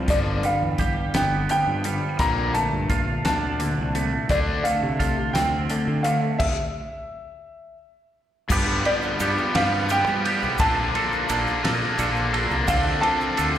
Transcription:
0.08 fingered electric bass G1, overdriven electric guitar G2 D3 F3, upright piano D5, kick, closed hi-hat
0.43 overdriven electric guitar G2 D3, clean electric guitar G3, upright piano F5, closed hi-hat
0.62 fingered electric bass E2
0.78 overdriven electric guitar G2 D3, clean electric guitar G4, kick, closed hi-hat
1.14 fingered electric bass G1, overdriven electric guitar G2 D3, clean electric guitar B3, upright piano G5, snare, closed hi-hat
1.49 overdriven electric guitar G2 D3, clean electric guitar F3, upright piano G5, closed hi-hat
1.67 fingered electric bass G2
1.84 overdriven electric guitar G2 D3, clean electric guitar G3, closed hi-hat
2.19 fingered electric bass A#1, overdriven electric guitar A#2 D3 A#3, upright piano A#5, kick, closed hi-hat
2.54 overdriven electric guitar A#2 D3, clean electric guitar A3, upright piano A5, closed hi-hat
2.72 fingered electric bass G2
2.90 overdriven electric guitar A#2 D3, clean electric guitar F4, kick, closed hi-hat
3.24 fingered electric bass D2, overdriven electric guitar A#2 D3, clean electric guitar D4, upright piano A5, snare, closed hi-hat
3.60 overdriven electric guitar A#2 D3, closed hi-hat
3.79 fingered electric bass C2
3.95 overdriven electric guitar A#2 D3, clean electric guitar A3, closed hi-hat
4.29 fingered electric bass D2, overdriven electric guitar D3 A3 D4, upright piano D5, kick, closed hi-hat
4.64 overdriven electric guitar D3 A3, upright piano F5, closed hi-hat
4.83 fingered electric bass C3
4.99 overdriven electric guitar D3 A3, clean electric guitar F4, kick, closed hi-hat
5.33 fingered electric bass D2, overdriven electric guitar D3 A3, clean electric guitar C4, upright piano G5, snare, closed hi-hat
5.70 overdriven electric guitar D3 A3, closed hi-hat
5.87 fingered electric bass D3
6.03 overdriven electric guitar D3 A3, upright piano F5, closed hi-hat
6.38 upright piano E5, kick, crash
8.49 overdriven electric guitar G2 D3 F3 G3 B3 G4, fingered electric bass G2, kick, crash, shaker
8.85 overdriven electric guitar F3 G3 B3 G4, upright piano D5, ride
9.02 shaker
9.19 fingered electric bass G2, overdriven electric guitar F3 G3 B3 G4, ride, shaker
9.38 shaker
9.54 fingered electric bass G2, overdriven electric guitar F3 G3 B3 G4, upright piano F5, snare, ride
9.88 overdriven electric guitar F3 G3 B3 G4, upright piano G5, ride, shaker
10.06 fingered electric bass G3, shaker
10.24 overdriven electric guitar F3 G3 B3 G4, ride
10.42 fingered electric bass B1, shaker
10.58 fingered electric bass A#1, overdriven electric guitar A#2 D3 A#3 D4 F4, clean electric guitar F3 A4, upright piano A5, kick, ride, shaker
10.93 clean electric guitar F3 A4, overdriven electric guitar A#3 D4 F4, ride
11.12 shaker
11.27 fingered electric bass A#1, overdriven electric guitar D3 A#3 D4 F4, clean electric guitar F3 A4, ride, shaker
11.47 shaker
11.63 fingered electric bass A#2, clean electric guitar F3 A4, overdriven electric guitar A#3 D4 F4, snare, ride
11.98 fingered electric bass A#1, overdriven electric guitar D3 A#3 D4 F4, clean electric guitar F3 A4, ride, shaker
12.16 shaker
12.32 clean electric guitar F3 A4, overdriven electric guitar A#3 D4 F4, ride
12.50 fingered electric bass C2, shaker
12.67 fingered electric bass D2, overdriven electric guitar D3 A3 D4 F4, clean electric guitar F3 C4 A4, upright piano F5, kick, ride, shaker
13.01 clean electric guitar F3 C4 A4, overdriven electric guitar A3 D4 F4, upright piano A5, ride
13.21 shaker
13.36 fingered electric bass D2, overdriven electric guitar D3 A3 D4 F4, clean electric guitar F3 C4 A4, ride, shaker
13.55 shaker

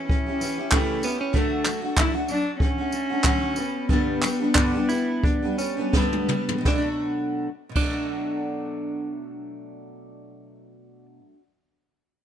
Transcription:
Already playing: steel-string acoustic guitar E3 C#4 E4 G4
0.08 cello C#4, kick
0.27 steel-string acoustic guitar C#4 E4 G4
0.40 steel-string acoustic guitar E3 C#4 E4 G4, tambourine
0.58 steel-string acoustic guitar C#4 E4 G4
0.71 steel-string acoustic guitar C#3 E3 C#4 E4 G4, clean electric guitar A3, kick, clap
1.02 steel-string acoustic guitar E3 C#4 E4 G4, clean electric guitar B3, tambourine
1.21 clean electric guitar C#4
1.33 steel-string acoustic guitar D3 F#3 A3 D4 F#4, clean electric guitar A3, kick
1.64 steel-string acoustic guitar F#3 A3 D4 F#4, clap, tambourine
1.82 steel-string acoustic guitar A3 D4 F#4
1.96 steel-string acoustic guitar D3 F#3 A3 D4 F#4, cello E4, kick, clap
2.14 steel-string acoustic guitar A3 D4 F#4
2.28 steel-string acoustic guitar F#3 A3 D4 F#4, cello D4, tambourine
2.60 cello C#4, kick
2.78 steel-string acoustic guitar A3 D4 F#4
2.91 steel-string acoustic guitar F#3 A3 D4 F#4, tambourine
3.10 steel-string acoustic guitar A3 D4 F#4
3.24 steel-string acoustic guitar D3 F#3 A3 F#4, kick, clap
3.56 steel-string acoustic guitar G3 B3 G4, tambourine
3.89 steel-string acoustic guitar G2 D3 G3 B3 D4 G4, cello B3, kick
4.22 steel-string acoustic guitar G3 B3 D4 G4, clap, tambourine
4.40 steel-string acoustic guitar G3 B3 D4 G4
4.55 steel-string acoustic guitar G2 D3 G3 B3 D4 G4, clean electric guitar D4, kick, clap
4.74 steel-string acoustic guitar G3 B3 D4 G4
4.89 steel-string acoustic guitar G3 B3 D4 G4, clean electric guitar E4, tambourine
5.24 clean electric guitar D4, kick
5.42 steel-string acoustic guitar G3 B3 D4 G4
5.58 steel-string acoustic guitar G3 B3 D4 G4, clean electric guitar C#4, tambourine
5.77 steel-string acoustic guitar G3 B3 D4 G4
5.93 steel-string acoustic guitar G2 D3 G3 B3 D4 G4, clean electric guitar B3, kick, snare
6.13 high tom
6.28 steel-string acoustic guitar G3 B3 D4 G4, mid tom
6.49 floor tom
6.58 steel-string acoustic guitar B2
6.65 steel-string acoustic guitar F#3, clean electric guitar D4, kick, snare
6.70 steel-string acoustic guitar A3
6.76 steel-string acoustic guitar D4
6.80 steel-string acoustic guitar F#4
7.69 steel-string acoustic guitar B2
7.75 steel-string acoustic guitar F#3, clean electric guitar D4, kick, crash
7.81 steel-string acoustic guitar A3
7.87 steel-string acoustic guitar D4
7.91 steel-string acoustic guitar F#4

